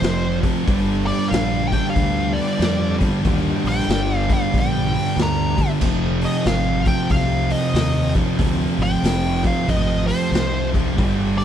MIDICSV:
0, 0, Header, 1, 7, 480
1, 0, Start_track
1, 0, Tempo, 644468
1, 497, Time_signature, 4, 2, 24, 8
1, 8524, End_track
2, 0, Start_track
2, 0, Title_t, "Lead electric guitar"
2, 0, Program_c, 0, 29
2, 0, Note_on_c, 0, 72, 83
2, 286, Note_off_c, 0, 72, 0
2, 794, Note_on_c, 0, 74, 92
2, 955, Note_on_c, 0, 77, 97
2, 962, Note_off_c, 0, 74, 0
2, 1247, Note_off_c, 0, 77, 0
2, 1250, Note_on_c, 0, 79, 95
2, 1414, Note_off_c, 0, 79, 0
2, 1417, Note_on_c, 0, 77, 111
2, 1737, Note_on_c, 0, 74, 79
2, 1747, Note_off_c, 0, 77, 0
2, 2196, Note_off_c, 0, 74, 0
2, 2742, Note_on_c, 0, 79, 94
2, 3107, Note_off_c, 0, 79, 0
2, 3107, Note_on_c, 0, 77, 94
2, 3222, Note_off_c, 0, 77, 0
2, 3230, Note_on_c, 0, 77, 80
2, 3396, Note_off_c, 0, 77, 0
2, 3422, Note_on_c, 0, 79, 91
2, 3848, Note_off_c, 0, 79, 0
2, 3892, Note_on_c, 0, 82, 114
2, 4237, Note_off_c, 0, 82, 0
2, 4656, Note_on_c, 0, 75, 88
2, 4812, Note_off_c, 0, 75, 0
2, 4817, Note_on_c, 0, 77, 101
2, 5095, Note_off_c, 0, 77, 0
2, 5121, Note_on_c, 0, 79, 97
2, 5295, Note_off_c, 0, 79, 0
2, 5298, Note_on_c, 0, 77, 97
2, 5576, Note_off_c, 0, 77, 0
2, 5599, Note_on_c, 0, 75, 87
2, 6047, Note_off_c, 0, 75, 0
2, 6576, Note_on_c, 0, 79, 119
2, 7016, Note_off_c, 0, 79, 0
2, 7052, Note_on_c, 0, 77, 89
2, 7210, Note_off_c, 0, 77, 0
2, 7224, Note_on_c, 0, 75, 100
2, 7501, Note_off_c, 0, 75, 0
2, 7503, Note_on_c, 0, 72, 73
2, 7959, Note_off_c, 0, 72, 0
2, 8475, Note_on_c, 0, 74, 89
2, 8524, Note_off_c, 0, 74, 0
2, 8524, End_track
3, 0, Start_track
3, 0, Title_t, "Tonewheel organ"
3, 0, Program_c, 1, 16
3, 0, Note_on_c, 1, 53, 69
3, 0, Note_on_c, 1, 60, 59
3, 0, Note_on_c, 1, 67, 79
3, 467, Note_off_c, 1, 67, 0
3, 470, Note_off_c, 1, 60, 0
3, 473, Note_off_c, 1, 53, 0
3, 507, Note_on_c, 1, 67, 76
3, 510, Note_on_c, 1, 55, 69
3, 514, Note_on_c, 1, 62, 66
3, 4310, Note_off_c, 1, 55, 0
3, 4312, Note_off_c, 1, 62, 0
3, 4346, Note_on_c, 1, 60, 62
3, 4350, Note_on_c, 1, 53, 64
3, 8150, Note_off_c, 1, 60, 0
3, 8152, Note_off_c, 1, 53, 0
3, 8175, Note_on_c, 1, 62, 61
3, 8182, Note_on_c, 1, 55, 70
3, 8524, Note_off_c, 1, 55, 0
3, 8524, Note_off_c, 1, 62, 0
3, 8524, Note_off_c, 1, 67, 0
3, 8524, End_track
4, 0, Start_track
4, 0, Title_t, "Distorted electric guitar"
4, 0, Program_c, 2, 30
4, 9, Note_on_c, 2, 41, 95
4, 19, Note_on_c, 2, 53, 95
4, 21, Note_on_c, 2, 48, 87
4, 305, Note_off_c, 2, 41, 0
4, 309, Note_off_c, 2, 48, 0
4, 314, Note_on_c, 2, 41, 87
4, 315, Note_off_c, 2, 53, 0
4, 318, Note_on_c, 2, 48, 94
4, 324, Note_on_c, 2, 53, 102
4, 484, Note_off_c, 2, 41, 0
4, 486, Note_off_c, 2, 48, 0
4, 487, Note_on_c, 2, 43, 111
4, 489, Note_off_c, 2, 53, 0
4, 490, Note_on_c, 2, 50, 115
4, 500, Note_on_c, 2, 55, 118
4, 790, Note_off_c, 2, 50, 0
4, 793, Note_off_c, 2, 43, 0
4, 796, Note_on_c, 2, 43, 83
4, 799, Note_on_c, 2, 50, 85
4, 801, Note_off_c, 2, 55, 0
4, 804, Note_on_c, 2, 55, 92
4, 973, Note_off_c, 2, 50, 0
4, 981, Note_off_c, 2, 43, 0
4, 982, Note_on_c, 2, 50, 111
4, 984, Note_on_c, 2, 43, 89
4, 987, Note_off_c, 2, 55, 0
4, 990, Note_on_c, 2, 55, 109
4, 1280, Note_off_c, 2, 43, 0
4, 1282, Note_off_c, 2, 50, 0
4, 1283, Note_on_c, 2, 43, 93
4, 1289, Note_off_c, 2, 55, 0
4, 1291, Note_on_c, 2, 50, 91
4, 1292, Note_on_c, 2, 55, 109
4, 1448, Note_off_c, 2, 43, 0
4, 1448, Note_off_c, 2, 50, 0
4, 1455, Note_off_c, 2, 55, 0
4, 1457, Note_on_c, 2, 43, 90
4, 1457, Note_on_c, 2, 50, 97
4, 1464, Note_on_c, 2, 55, 96
4, 1745, Note_off_c, 2, 43, 0
4, 1749, Note_off_c, 2, 55, 0
4, 1751, Note_off_c, 2, 50, 0
4, 1753, Note_on_c, 2, 43, 91
4, 1758, Note_on_c, 2, 55, 118
4, 1760, Note_on_c, 2, 50, 96
4, 1910, Note_off_c, 2, 43, 0
4, 1911, Note_off_c, 2, 50, 0
4, 1919, Note_off_c, 2, 55, 0
4, 1919, Note_on_c, 2, 43, 86
4, 1920, Note_on_c, 2, 50, 96
4, 1928, Note_on_c, 2, 55, 98
4, 2209, Note_off_c, 2, 43, 0
4, 2214, Note_off_c, 2, 50, 0
4, 2217, Note_off_c, 2, 55, 0
4, 2218, Note_on_c, 2, 43, 96
4, 2223, Note_on_c, 2, 50, 93
4, 2226, Note_on_c, 2, 55, 85
4, 2397, Note_off_c, 2, 43, 0
4, 2399, Note_off_c, 2, 50, 0
4, 2406, Note_off_c, 2, 55, 0
4, 2406, Note_on_c, 2, 43, 119
4, 2408, Note_on_c, 2, 50, 112
4, 2415, Note_on_c, 2, 55, 127
4, 2700, Note_off_c, 2, 43, 0
4, 2702, Note_off_c, 2, 50, 0
4, 2706, Note_off_c, 2, 55, 0
4, 2709, Note_on_c, 2, 43, 81
4, 2710, Note_on_c, 2, 50, 87
4, 2715, Note_on_c, 2, 55, 97
4, 2878, Note_off_c, 2, 43, 0
4, 2880, Note_off_c, 2, 50, 0
4, 2887, Note_on_c, 2, 43, 97
4, 2888, Note_off_c, 2, 55, 0
4, 2889, Note_on_c, 2, 50, 89
4, 2897, Note_on_c, 2, 55, 101
4, 3180, Note_off_c, 2, 43, 0
4, 3180, Note_off_c, 2, 50, 0
4, 3184, Note_off_c, 2, 55, 0
4, 3189, Note_on_c, 2, 43, 101
4, 3189, Note_on_c, 2, 50, 92
4, 3193, Note_on_c, 2, 55, 108
4, 3348, Note_off_c, 2, 43, 0
4, 3354, Note_off_c, 2, 50, 0
4, 3357, Note_on_c, 2, 43, 87
4, 3358, Note_off_c, 2, 55, 0
4, 3363, Note_on_c, 2, 50, 98
4, 3367, Note_on_c, 2, 55, 96
4, 3661, Note_off_c, 2, 43, 0
4, 3666, Note_off_c, 2, 50, 0
4, 3669, Note_off_c, 2, 55, 0
4, 3670, Note_on_c, 2, 43, 96
4, 3674, Note_on_c, 2, 50, 98
4, 3678, Note_on_c, 2, 55, 99
4, 3827, Note_off_c, 2, 43, 0
4, 3827, Note_off_c, 2, 50, 0
4, 3836, Note_off_c, 2, 55, 0
4, 3836, Note_on_c, 2, 43, 87
4, 3836, Note_on_c, 2, 50, 80
4, 3845, Note_on_c, 2, 55, 92
4, 4125, Note_off_c, 2, 43, 0
4, 4130, Note_off_c, 2, 50, 0
4, 4131, Note_off_c, 2, 55, 0
4, 4134, Note_on_c, 2, 43, 79
4, 4139, Note_on_c, 2, 50, 92
4, 4140, Note_on_c, 2, 55, 99
4, 4312, Note_off_c, 2, 43, 0
4, 4315, Note_off_c, 2, 50, 0
4, 4315, Note_off_c, 2, 55, 0
4, 4315, Note_on_c, 2, 41, 97
4, 4322, Note_on_c, 2, 48, 104
4, 4325, Note_on_c, 2, 53, 115
4, 4618, Note_off_c, 2, 41, 0
4, 4620, Note_off_c, 2, 48, 0
4, 4621, Note_on_c, 2, 41, 74
4, 4626, Note_off_c, 2, 53, 0
4, 4629, Note_on_c, 2, 48, 97
4, 4629, Note_on_c, 2, 53, 89
4, 4797, Note_off_c, 2, 41, 0
4, 4797, Note_off_c, 2, 48, 0
4, 4800, Note_on_c, 2, 41, 97
4, 4806, Note_on_c, 2, 48, 99
4, 4810, Note_off_c, 2, 53, 0
4, 4813, Note_on_c, 2, 53, 106
4, 5099, Note_off_c, 2, 48, 0
4, 5102, Note_off_c, 2, 41, 0
4, 5105, Note_on_c, 2, 41, 83
4, 5108, Note_on_c, 2, 48, 94
4, 5112, Note_off_c, 2, 53, 0
4, 5115, Note_on_c, 2, 53, 109
4, 5276, Note_off_c, 2, 41, 0
4, 5279, Note_off_c, 2, 48, 0
4, 5285, Note_off_c, 2, 53, 0
4, 5285, Note_on_c, 2, 41, 83
4, 5288, Note_on_c, 2, 48, 98
4, 5294, Note_on_c, 2, 53, 101
4, 5571, Note_off_c, 2, 41, 0
4, 5580, Note_off_c, 2, 48, 0
4, 5580, Note_on_c, 2, 41, 96
4, 5586, Note_off_c, 2, 53, 0
4, 5589, Note_on_c, 2, 48, 104
4, 5595, Note_on_c, 2, 53, 111
4, 5762, Note_off_c, 2, 41, 0
4, 5764, Note_off_c, 2, 48, 0
4, 5769, Note_off_c, 2, 53, 0
4, 5771, Note_on_c, 2, 41, 86
4, 5773, Note_on_c, 2, 48, 101
4, 5778, Note_on_c, 2, 53, 90
4, 6056, Note_off_c, 2, 41, 0
4, 6063, Note_off_c, 2, 48, 0
4, 6065, Note_on_c, 2, 41, 84
4, 6066, Note_off_c, 2, 53, 0
4, 6072, Note_on_c, 2, 48, 92
4, 6075, Note_on_c, 2, 53, 108
4, 6235, Note_off_c, 2, 41, 0
4, 6240, Note_off_c, 2, 48, 0
4, 6241, Note_off_c, 2, 53, 0
4, 6244, Note_on_c, 2, 41, 114
4, 6249, Note_on_c, 2, 48, 106
4, 6250, Note_on_c, 2, 53, 112
4, 6534, Note_off_c, 2, 41, 0
4, 6539, Note_off_c, 2, 48, 0
4, 6541, Note_off_c, 2, 53, 0
4, 6543, Note_on_c, 2, 41, 92
4, 6548, Note_on_c, 2, 48, 94
4, 6550, Note_on_c, 2, 53, 105
4, 6698, Note_off_c, 2, 41, 0
4, 6702, Note_off_c, 2, 48, 0
4, 6707, Note_on_c, 2, 41, 86
4, 6711, Note_off_c, 2, 53, 0
4, 6711, Note_on_c, 2, 48, 104
4, 6720, Note_on_c, 2, 53, 114
4, 7009, Note_off_c, 2, 41, 0
4, 7017, Note_off_c, 2, 53, 0
4, 7018, Note_off_c, 2, 48, 0
4, 7018, Note_on_c, 2, 41, 83
4, 7026, Note_on_c, 2, 53, 90
4, 7027, Note_on_c, 2, 48, 109
4, 7189, Note_off_c, 2, 41, 0
4, 7190, Note_off_c, 2, 48, 0
4, 7198, Note_off_c, 2, 53, 0
4, 7198, Note_on_c, 2, 41, 85
4, 7199, Note_on_c, 2, 48, 89
4, 7207, Note_on_c, 2, 53, 97
4, 7480, Note_off_c, 2, 41, 0
4, 7482, Note_off_c, 2, 48, 0
4, 7485, Note_off_c, 2, 53, 0
4, 7489, Note_on_c, 2, 41, 98
4, 7491, Note_on_c, 2, 48, 102
4, 7494, Note_on_c, 2, 53, 98
4, 7664, Note_off_c, 2, 41, 0
4, 7668, Note_off_c, 2, 48, 0
4, 7673, Note_on_c, 2, 41, 93
4, 7676, Note_off_c, 2, 53, 0
4, 7677, Note_on_c, 2, 48, 93
4, 7685, Note_on_c, 2, 53, 94
4, 7970, Note_off_c, 2, 41, 0
4, 7978, Note_off_c, 2, 48, 0
4, 7979, Note_on_c, 2, 41, 94
4, 7983, Note_off_c, 2, 53, 0
4, 7987, Note_on_c, 2, 48, 92
4, 7992, Note_on_c, 2, 53, 106
4, 8155, Note_off_c, 2, 41, 0
4, 8159, Note_off_c, 2, 48, 0
4, 8160, Note_on_c, 2, 43, 110
4, 8162, Note_off_c, 2, 53, 0
4, 8165, Note_on_c, 2, 50, 103
4, 8172, Note_on_c, 2, 55, 112
4, 8466, Note_off_c, 2, 50, 0
4, 8469, Note_off_c, 2, 43, 0
4, 8472, Note_on_c, 2, 43, 81
4, 8475, Note_on_c, 2, 50, 92
4, 8476, Note_off_c, 2, 55, 0
4, 8479, Note_on_c, 2, 55, 101
4, 8524, Note_off_c, 2, 43, 0
4, 8524, Note_off_c, 2, 50, 0
4, 8524, Note_off_c, 2, 55, 0
4, 8524, End_track
5, 0, Start_track
5, 0, Title_t, "Distorted electric guitar"
5, 0, Program_c, 3, 30
5, 0, Note_on_c, 3, 41, 88
5, 0, Note_on_c, 3, 48, 97
5, 0, Note_on_c, 3, 53, 101
5, 294, Note_off_c, 3, 41, 0
5, 298, Note_off_c, 3, 53, 0
5, 301, Note_off_c, 3, 48, 0
5, 2248, Note_on_c, 3, 43, 75
5, 2397, Note_off_c, 3, 43, 0
5, 4181, Note_on_c, 3, 43, 77
5, 4325, Note_off_c, 3, 43, 0
5, 4354, Note_on_c, 3, 53, 112
5, 6050, Note_off_c, 3, 53, 0
5, 8013, Note_on_c, 3, 41, 75
5, 8158, Note_off_c, 3, 41, 0
5, 8524, End_track
6, 0, Start_track
6, 0, Title_t, "Fingered electric bass"
6, 0, Program_c, 4, 33
6, 11, Note_on_c, 4, 29, 95
6, 329, Note_off_c, 4, 29, 0
6, 507, Note_on_c, 4, 31, 105
6, 820, Note_off_c, 4, 31, 0
6, 976, Note_on_c, 4, 34, 94
6, 1292, Note_off_c, 4, 34, 0
6, 1455, Note_on_c, 4, 38, 89
6, 1771, Note_off_c, 4, 38, 0
6, 1928, Note_on_c, 4, 41, 90
6, 2247, Note_off_c, 4, 41, 0
6, 2423, Note_on_c, 4, 39, 112
6, 2619, Note_off_c, 4, 39, 0
6, 2708, Note_on_c, 4, 34, 96
6, 2828, Note_off_c, 4, 34, 0
6, 2886, Note_on_c, 4, 31, 92
6, 3205, Note_off_c, 4, 31, 0
6, 3376, Note_on_c, 4, 34, 86
6, 3692, Note_off_c, 4, 34, 0
6, 3843, Note_on_c, 4, 38, 90
6, 4163, Note_off_c, 4, 38, 0
6, 4330, Note_on_c, 4, 29, 100
6, 4647, Note_off_c, 4, 29, 0
6, 4803, Note_on_c, 4, 32, 89
6, 5123, Note_off_c, 4, 32, 0
6, 5288, Note_on_c, 4, 36, 88
6, 5606, Note_off_c, 4, 36, 0
6, 5760, Note_on_c, 4, 39, 93
6, 6081, Note_off_c, 4, 39, 0
6, 6252, Note_on_c, 4, 38, 94
6, 6451, Note_off_c, 4, 38, 0
6, 6540, Note_on_c, 4, 32, 90
6, 6662, Note_off_c, 4, 32, 0
6, 6724, Note_on_c, 4, 29, 101
6, 7043, Note_off_c, 4, 29, 0
6, 7212, Note_on_c, 4, 32, 84
6, 7529, Note_off_c, 4, 32, 0
6, 7678, Note_on_c, 4, 36, 88
6, 8183, Note_on_c, 4, 31, 107
6, 8194, Note_off_c, 4, 36, 0
6, 8497, Note_off_c, 4, 31, 0
6, 8524, End_track
7, 0, Start_track
7, 0, Title_t, "Drums"
7, 19, Note_on_c, 9, 46, 92
7, 33, Note_on_c, 9, 38, 127
7, 94, Note_off_c, 9, 46, 0
7, 107, Note_off_c, 9, 38, 0
7, 323, Note_on_c, 9, 36, 86
7, 323, Note_on_c, 9, 46, 64
7, 397, Note_off_c, 9, 36, 0
7, 397, Note_off_c, 9, 46, 0
7, 503, Note_on_c, 9, 36, 120
7, 506, Note_on_c, 9, 46, 92
7, 578, Note_off_c, 9, 36, 0
7, 581, Note_off_c, 9, 46, 0
7, 807, Note_on_c, 9, 46, 65
7, 881, Note_off_c, 9, 46, 0
7, 984, Note_on_c, 9, 46, 97
7, 998, Note_on_c, 9, 38, 127
7, 1059, Note_off_c, 9, 46, 0
7, 1072, Note_off_c, 9, 38, 0
7, 1282, Note_on_c, 9, 46, 60
7, 1283, Note_on_c, 9, 36, 86
7, 1357, Note_off_c, 9, 36, 0
7, 1357, Note_off_c, 9, 46, 0
7, 1457, Note_on_c, 9, 46, 91
7, 1461, Note_on_c, 9, 36, 90
7, 1531, Note_off_c, 9, 46, 0
7, 1535, Note_off_c, 9, 36, 0
7, 1766, Note_on_c, 9, 46, 74
7, 1841, Note_off_c, 9, 46, 0
7, 1941, Note_on_c, 9, 46, 92
7, 1954, Note_on_c, 9, 38, 127
7, 2016, Note_off_c, 9, 46, 0
7, 2029, Note_off_c, 9, 38, 0
7, 2237, Note_on_c, 9, 46, 60
7, 2241, Note_on_c, 9, 36, 81
7, 2312, Note_off_c, 9, 46, 0
7, 2316, Note_off_c, 9, 36, 0
7, 2419, Note_on_c, 9, 46, 89
7, 2420, Note_on_c, 9, 36, 119
7, 2494, Note_off_c, 9, 36, 0
7, 2494, Note_off_c, 9, 46, 0
7, 2720, Note_on_c, 9, 46, 65
7, 2795, Note_off_c, 9, 46, 0
7, 2824, Note_on_c, 9, 38, 35
7, 2896, Note_on_c, 9, 46, 95
7, 2899, Note_off_c, 9, 38, 0
7, 2909, Note_on_c, 9, 38, 127
7, 2971, Note_off_c, 9, 46, 0
7, 2984, Note_off_c, 9, 38, 0
7, 3199, Note_on_c, 9, 36, 98
7, 3199, Note_on_c, 9, 46, 66
7, 3273, Note_off_c, 9, 36, 0
7, 3273, Note_off_c, 9, 46, 0
7, 3379, Note_on_c, 9, 36, 88
7, 3381, Note_on_c, 9, 46, 84
7, 3454, Note_off_c, 9, 36, 0
7, 3456, Note_off_c, 9, 46, 0
7, 3679, Note_on_c, 9, 46, 70
7, 3754, Note_off_c, 9, 46, 0
7, 3856, Note_on_c, 9, 46, 89
7, 3869, Note_on_c, 9, 38, 121
7, 3930, Note_off_c, 9, 46, 0
7, 3944, Note_off_c, 9, 38, 0
7, 4154, Note_on_c, 9, 46, 57
7, 4156, Note_on_c, 9, 36, 86
7, 4228, Note_off_c, 9, 46, 0
7, 4230, Note_off_c, 9, 36, 0
7, 4327, Note_on_c, 9, 49, 105
7, 4333, Note_on_c, 9, 36, 117
7, 4402, Note_off_c, 9, 49, 0
7, 4407, Note_off_c, 9, 36, 0
7, 4629, Note_on_c, 9, 46, 67
7, 4703, Note_off_c, 9, 46, 0
7, 4803, Note_on_c, 9, 46, 94
7, 4817, Note_on_c, 9, 38, 127
7, 4878, Note_off_c, 9, 46, 0
7, 4891, Note_off_c, 9, 38, 0
7, 5104, Note_on_c, 9, 46, 62
7, 5110, Note_on_c, 9, 36, 88
7, 5179, Note_off_c, 9, 46, 0
7, 5185, Note_off_c, 9, 36, 0
7, 5284, Note_on_c, 9, 46, 86
7, 5289, Note_on_c, 9, 36, 88
7, 5358, Note_off_c, 9, 46, 0
7, 5364, Note_off_c, 9, 36, 0
7, 5587, Note_on_c, 9, 46, 68
7, 5662, Note_off_c, 9, 46, 0
7, 5770, Note_on_c, 9, 46, 102
7, 5783, Note_on_c, 9, 38, 121
7, 5844, Note_off_c, 9, 46, 0
7, 5858, Note_off_c, 9, 38, 0
7, 6066, Note_on_c, 9, 46, 70
7, 6071, Note_on_c, 9, 36, 90
7, 6140, Note_off_c, 9, 46, 0
7, 6146, Note_off_c, 9, 36, 0
7, 6246, Note_on_c, 9, 46, 97
7, 6249, Note_on_c, 9, 36, 114
7, 6320, Note_off_c, 9, 46, 0
7, 6324, Note_off_c, 9, 36, 0
7, 6551, Note_on_c, 9, 46, 71
7, 6626, Note_off_c, 9, 46, 0
7, 6732, Note_on_c, 9, 46, 107
7, 6746, Note_on_c, 9, 38, 125
7, 6807, Note_off_c, 9, 46, 0
7, 6820, Note_off_c, 9, 38, 0
7, 7031, Note_on_c, 9, 46, 71
7, 7033, Note_on_c, 9, 36, 89
7, 7105, Note_off_c, 9, 46, 0
7, 7107, Note_off_c, 9, 36, 0
7, 7213, Note_on_c, 9, 36, 93
7, 7215, Note_on_c, 9, 46, 91
7, 7287, Note_off_c, 9, 36, 0
7, 7289, Note_off_c, 9, 46, 0
7, 7514, Note_on_c, 9, 46, 68
7, 7589, Note_off_c, 9, 46, 0
7, 7698, Note_on_c, 9, 46, 88
7, 7711, Note_on_c, 9, 38, 123
7, 7772, Note_off_c, 9, 46, 0
7, 7785, Note_off_c, 9, 38, 0
7, 8001, Note_on_c, 9, 36, 81
7, 8004, Note_on_c, 9, 46, 57
7, 8075, Note_off_c, 9, 36, 0
7, 8079, Note_off_c, 9, 46, 0
7, 8180, Note_on_c, 9, 36, 118
7, 8181, Note_on_c, 9, 46, 86
7, 8254, Note_off_c, 9, 36, 0
7, 8256, Note_off_c, 9, 46, 0
7, 8483, Note_on_c, 9, 46, 67
7, 8524, Note_off_c, 9, 46, 0
7, 8524, End_track
0, 0, End_of_file